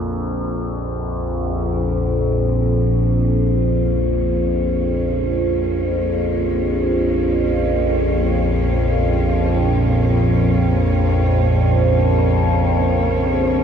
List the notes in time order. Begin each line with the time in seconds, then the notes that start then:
Already playing: A#1 F2
1.50 A#1 F2 C#3
2.50 A#3
3.17 F4
3.87 C#5